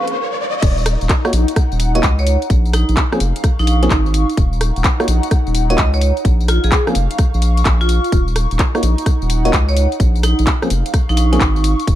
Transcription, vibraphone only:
1.95 2.13 D#5 medium
2.19 2.36 C#5 medium
2.74 2.94 D#4 medium
3.59 3.64 D#4 medium
3.67 3.77 D#4 medium
3.83 4.30 D#4 loud
5.70 5.87 D#5 loud
5.94 6.11 C#5 medium
6.49 6.61 F4 medium
6.64 6.81 G#4 medium
7.81 8.19 F4 medium
9.45 9.63 D#5 loud
9.69 9.86 C#5 medium
10.24 10.44 D#4 medium
11.09 11.14 D#4 medium
11.17 11.27 D#4 medium
11.33 11.79 D#4 medium

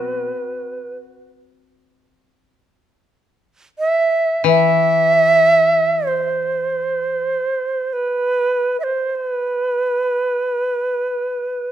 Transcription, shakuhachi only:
0.00 0.96 B4 soft
3.79 4.43 E5 medium
4.47 6.09 E5 medium
6.07 7.94 C5 medium
7.93 8.79 B4 medium
8.80 9.15 C5 medium
8.80 8.85 E5 soft
9.15 9.28 C5 medium
9.28 11.72 B4 medium

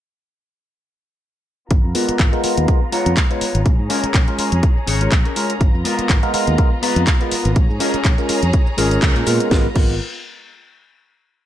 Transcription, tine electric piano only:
1.95 2.29 G#3 medium
1.95 2.30 B3 medium
1.95 2.30 F4 medium
1.95 2.30 A#4 medium
2.33 2.41 G#3 medium
2.33 2.41 B3 medium
2.33 2.41 F4 medium
2.33 2.42 A#4 loud
2.44 2.66 G#3 medium
2.44 2.66 B3 medium
2.44 2.66 F4 medium
2.44 2.66 A#4 medium
2.68 2.78 G#3 medium
2.68 2.79 B3 medium
2.68 2.79 F4 medium
2.68 2.79 A#4 medium
2.92 3.27 G#3 medium
2.92 3.27 B3 medium
2.92 3.27 F4 medium
2.92 3.27 A#5 medium
3.30 3.44 G#3 medium
3.30 3.44 B3 medium
3.30 3.44 F4 medium
3.30 3.45 B4 medium
3.90 4.06 G#3 medium
3.90 4.06 C#4 medium
3.90 4.06 F4 medium
3.90 4.06 A#4 loud
4.27 4.36 G#3 medium
4.27 4.36 C#4 medium
4.27 4.36 F4 medium
4.27 4.36 A#4 loud
4.39 4.49 G#3 medium
4.39 4.49 C#4 medium
4.39 4.49 F4 medium
4.39 4.50 A#4 medium
5.01 5.09 G#3 medium
5.01 5.09 C#4 medium
5.01 5.09 F4 medium
5.01 5.10 A#4 medium
5.36 5.52 G#3 medium
5.36 5.52 C#4 medium
5.36 5.52 F4 medium
5.36 5.53 A#4 loud
5.85 6.20 G#3 medium
5.85 6.20 B3 medium
5.85 6.20 F4 medium
5.85 6.20 A#4 medium
6.23 6.31 G#3 medium
6.23 6.31 B3 medium
6.23 6.31 F4 medium
6.23 6.31 A#4 loud
6.33 6.56 G#3 medium
6.33 6.56 B3 medium
6.33 6.56 F4 medium
6.33 6.56 A#4 medium
6.58 6.68 G#3 medium
6.58 6.69 B3 medium
6.58 6.69 F4 medium
6.58 6.69 A#4 loud
6.82 7.17 G#3 medium
6.82 7.17 B3 medium
6.82 7.17 F4 medium
6.82 7.18 A#5 medium
7.20 7.34 G#3 medium
7.20 7.34 B3 medium
7.20 7.35 F4 medium
7.20 7.35 B4 medium
7.80 7.96 G#3 medium
7.80 7.96 C#4 medium
7.80 7.96 F4 medium
7.80 7.96 A#4 loud
8.18 8.26 G#3 medium
8.18 8.26 C#4 medium
8.18 8.27 F4 medium
8.18 8.27 A#4 loud
8.29 8.39 G#3 medium
8.29 8.39 C#4 medium
8.29 8.39 F4 medium
8.29 8.40 A#4 medium
8.77 9.00 G#3 loud
8.77 9.00 C#4 medium
8.77 9.00 F4 medium
8.77 9.00 A#4 loud
9.02 9.24 G#3 medium
9.02 9.24 C#4 medium
9.02 9.24 F4 medium
9.02 9.24 A#4 medium
9.26 9.49 G#3 loud
9.26 9.50 B3 medium
9.26 9.51 F4 medium
9.26 9.51 A#4 loud
9.50 9.65 G#3 medium
9.50 9.66 B3 medium
9.50 9.66 F4 medium
9.50 9.66 A#4 medium
9.74 9.94 G#3 medium
9.74 9.94 B3 medium
9.74 9.94 F4 medium
9.74 9.95 A#4 medium

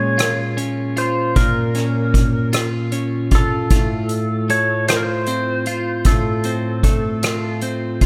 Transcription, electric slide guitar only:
0.00 0.54 C#5 medium
0.98 1.38 C5 medium
1.36 2.50 A#4 medium
3.35 4.47 A4 medium
4.50 4.88 C#5 medium
4.89 4.96 C5 medium
4.96 5.03 A#4 medium
5.03 6.09 C5 medium
6.06 7.58 A4 medium

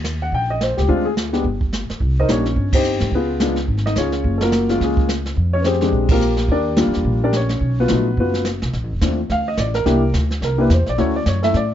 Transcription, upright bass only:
0.00 0.29 D#2 medium
0.32 0.74 A#1 medium
0.78 0.88 C#2 medium
0.88 1.42 D2 medium
1.45 1.86 G1 medium
1.90 muted upright bass stroke soft
2.01 2.27 C2 medium
2.29 2.55 A#1 medium
2.56 2.98 G1 medium
3.01 3.11 G#2 medium
3.11 3.65 C#2 medium
3.68 3.95 G#1 medium
3.97 4.23 C#2 medium
4.24 4.78 F#1 medium
4.81 5.34 C#2 medium
5.37 5.90 F2 medium
5.92 6.46 A#1 medium
6.48 6.84 D#2 medium
6.87 6.96 F2 medium
6.96 7.04 E2 medium
7.05 7.59 A#1 medium
7.61 7.87 B1 medium
7.91 8.17 A#1 medium
8.17 8.59 F#1 medium
8.63 8.73 B1 medium
8.74 8.83 A#1 medium
8.83 8.92 A1 soft
8.92 9.00 F1 medium
9.01 9.29 D#2 medium
9.30 9.57 D2 medium
9.58 9.85 A1 medium
9.86 10.13 C2 medium
10.14 10.41 D2 medium
10.41 10.69 C2 medium
10.70 10.80 E2 medium
10.79 10.88 C2 medium
10.88 10.97 A#1 medium
10.98 11.25 D2 medium
11.26 11.53 F#2 medium
11.54 11.74 A2 medium

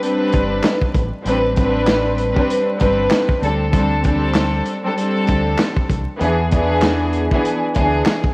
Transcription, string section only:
0.00 1.02 G3 loud
0.00 1.02 C4 medium
0.00 1.03 D4 medium
0.00 1.03 B4 loud
1.24 1.53 G3 loud
1.24 1.54 C4 medium
1.24 1.55 D4 medium
1.24 1.55 B4 loud
1.55 2.28 G3 loud
1.55 2.29 C4 medium
1.55 2.29 D4 medium
1.55 2.30 B4 loud
2.34 2.63 G3 medium
2.34 2.64 C4 medium
2.34 2.64 D4 medium
2.34 2.65 B4 medium
2.78 3.37 G3 loud
2.78 3.38 C4 medium
2.78 3.38 D4 medium
2.78 3.39 B4 loud
3.41 3.71 G3 medium
3.41 3.71 C4 medium
3.41 3.71 D4 medium
3.41 3.72 A4 medium
3.72 4.01 G3 loud
3.72 4.02 C4 medium
3.72 4.02 D4 medium
3.72 4.03 A4 loud
4.02 4.76 G3 loud
4.02 4.76 C4 medium
4.02 4.77 D4 medium
4.02 4.77 A4 loud
4.83 4.92 G3 loud
4.83 4.93 C4 medium
4.83 4.94 D4 medium
4.83 4.95 A4 medium
4.94 5.96 G3 loud
4.94 5.96 C4 medium
4.94 5.97 D4 medium
4.94 5.97 A4 loud
6.19 6.49 E3 loud
6.19 6.49 B3 medium
6.19 6.50 D4 medium
6.19 6.50 G#4 loud
6.50 7.23 E3 loud
6.50 7.24 B3 medium
6.50 7.24 D4 medium
6.50 7.25 G#4 loud
7.31 7.59 E3 loud
7.31 7.59 B3 medium
7.31 7.60 D4 medium
7.31 7.60 G#4 medium
7.73 8.32 E3 medium
7.73 8.32 B3 medium
7.73 8.33 D4 medium
7.73 8.33 G#4 loud

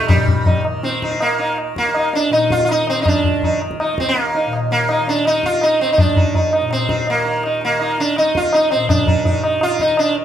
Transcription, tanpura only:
0.00 1.74 D#2 medium
0.00 0.09 A#2 medium
0.00 0.64 D#3 medium
0.09 2.29 A#2 medium
0.64 1.19 D#3 medium
1.19 2.83 D#3 medium
1.74 3.92 D#2 medium
2.29 4.46 A#2 medium
2.84 3.39 D#3 medium
3.39 5.00 D#3 medium
3.92 6.08 D#2 medium
4.46 6.61 A#2 medium
5.00 5.53 D#3 medium
5.53 7.14 D#3 medium
6.08 8.22 D#2 medium
6.61 8.74 A#2 medium
7.14 7.69 D#3 medium
7.69 9.28 D#3 medium
8.22 10.25 D#2 medium
8.75 10.25 A#2 medium
9.28 9.83 D#3 medium
9.83 10.25 D#3 medium

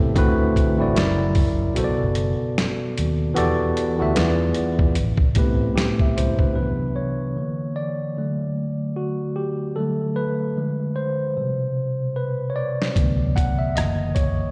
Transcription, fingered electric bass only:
0.00 0.11 C#2 medium
0.17 0.50 D2 loud
0.81 0.94 A1 medium
0.98 1.65 F#1 loud
1.78 1.97 B1 medium
2.01 2.34 F#1 medium
2.98 3.31 D#2 medium
3.38 3.71 E2 medium
4.02 4.15 D2 medium
4.18 4.51 E2 loud
4.58 muted fingered electric bass stroke soft
4.80 5.00 E2 medium
4.98 5.65 A1 medium
6.18 6.51 C#2 medium
12.97 13.73 D2 medium
13.78 14.51 F#1 medium

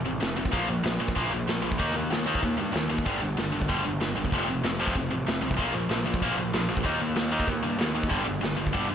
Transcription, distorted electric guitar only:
0.05 0.19 F2 medium
0.05 0.20 C3 medium
0.21 0.35 F2 medium
0.21 0.35 C3 medium
0.37 0.51 F2 medium
0.37 0.51 C3 medium
0.52 0.67 A#2 medium
0.52 0.67 F3 medium
0.52 0.68 A#3 loud
0.69 0.83 A#2 medium
0.69 0.83 F3 medium
0.84 0.98 A#2 medium
0.84 0.99 F3 medium
1.00 1.15 A#2 medium
1.00 1.15 F3 medium
1.16 1.31 A#2 medium
1.16 1.31 F3 medium
1.16 1.32 A#3 loud
1.32 1.46 A#2 medium
1.32 1.46 F3 medium
1.48 1.61 A#2 medium
1.48 1.62 F3 medium
1.62 1.77 A#2 medium
1.62 1.77 F3 medium
1.78 1.94 D#3 medium
1.78 1.94 A#3 medium
1.78 1.94 D#4 loud
1.95 2.09 D#3 medium
1.95 2.09 A#3 medium
2.10 2.25 D#3 medium
2.10 2.25 A#3 medium
2.27 2.41 D#3 medium
2.27 2.41 A#3 loud
2.27 2.42 D#4 loud
2.42 2.57 D#3 medium
2.42 2.57 A#3 medium
2.58 2.72 D#3 medium
2.58 2.73 A#3 medium
2.73 2.88 D#3 medium
2.73 2.88 A#3 medium
2.90 3.04 D#3 medium
2.90 3.04 A#3 medium
3.06 3.20 G2 medium
3.06 3.20 D3 medium
3.06 3.21 G3 loud
3.21 3.36 G2 medium
3.21 3.36 D3 medium
3.37 3.51 G2 medium
3.37 3.52 D3 medium
3.52 3.67 G2 medium
3.52 3.67 D3 medium
3.69 3.84 G2 medium
3.69 3.84 D3 loud
3.69 3.84 G3 medium
3.86 3.99 G2 medium
3.86 4.00 D3 medium
4.01 4.15 G2 medium
4.01 4.15 D3 medium
4.16 4.31 G2 medium
4.16 4.31 D3 medium
4.33 4.48 F2 medium
4.33 4.48 C3 loud
4.33 4.48 F3 loud
4.49 4.63 F2 medium
4.49 4.63 C3 medium
4.64 4.78 F2 medium
4.64 4.78 C3 medium
4.79 4.94 F2 medium
4.79 4.95 C3 loud
4.79 4.95 F3 loud
4.95 5.09 F2 medium
4.95 5.10 C3 medium
5.11 5.25 F2 medium
5.11 5.25 C3 medium
5.27 5.41 F2 medium
5.27 5.41 C3 medium
5.42 5.57 F2 medium
5.42 5.57 C3 medium
5.57 5.73 A#2 medium
5.57 5.73 F3 medium
5.57 5.73 A#3 loud
5.74 5.88 A#2 medium
5.74 5.88 F3 medium
5.89 6.04 A#2 medium
5.89 6.04 F3 medium
6.06 6.20 A#2 medium
6.06 6.20 F3 medium
6.22 6.37 A#2 medium
6.22 6.37 F3 medium
6.22 6.37 A#3 medium
6.38 6.52 A#2 medium
6.38 6.52 F3 medium
6.54 6.68 A#2 medium
6.54 6.68 F3 medium
6.69 6.83 A#2 medium
6.69 6.83 F3 medium
6.84 6.99 D#3 medium
6.84 7.00 A#3 medium
6.84 7.00 D#4 medium
7.00 7.15 D#3 medium
7.00 7.15 A#3 medium
7.16 7.31 D#3 medium
7.16 7.31 A#3 medium
7.32 7.45 D#3 loud
7.32 7.46 A#3 medium
7.32 7.47 D#4 loud
7.47 7.62 D#3 medium
7.47 7.62 A#3 medium
7.63 7.78 D#3 medium
7.63 7.78 A#3 medium
7.79 7.93 D#3 medium
7.79 7.94 A#3 medium
7.95 8.09 D#3 medium
7.95 8.10 A#3 medium
8.09 8.24 G2 medium
8.09 8.24 D3 medium
8.09 8.26 G3 medium
8.25 8.40 G2 medium
8.25 8.40 D3 medium
8.41 8.56 G2 medium
8.41 8.56 D3 medium
8.57 8.72 G2 medium
8.57 8.72 D3 medium
8.73 8.88 G2 medium
8.73 8.88 D3 medium
8.73 8.89 G3 medium
8.89 8.95 G2 medium
8.89 8.95 D3 medium

